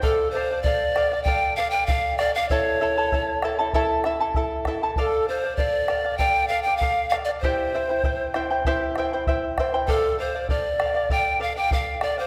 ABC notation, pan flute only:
X:1
M:4/4
L:1/16
Q:1/4=98
K:Dm
V:1 name="Pan flute"
A2 c2 d4 g2 f g f2 d f | ^c8 z8 | A2 c2 d4 g2 f g f2 f d | c8 z8 |
A2 c2 d4 g2 f g f2 d c |]